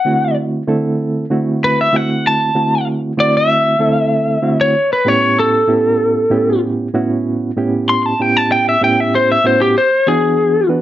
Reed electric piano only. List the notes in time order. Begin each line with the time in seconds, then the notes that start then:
0.05 D3 A3 C4 E4 F#4
0.67 D3 A3 C4 E4 A4
1.30 D3 A3 C4 E4 F#4
1.92 D3 A3 C4 E4 F#4
2.54 D3 A3 C4 E4 F#4
3.17 D3 A3 C4 E4 F#4
3.79 D3 A3 C4 E4 A4
4.42 D3 A3 C4 E4 F#4
5.05 A2 B3 C#4 E4 G4
5.67 A2 B3 C#4 E4 G4
6.30 A2 B3 C#4 E4 G4
6.93 A2 B3 C#4 E4 F#4
7.56 A2 B3 C#4 E4 G4
8.19 A2 B3 C#4 E4 G4
8.81 A2 B3 C#4 E4 G4
9.44 A2 B3 C#4 E4 F#4
10.07 E3 B3 D4 F#4 G#4
10.69 E3 B3 D4 F#4 B4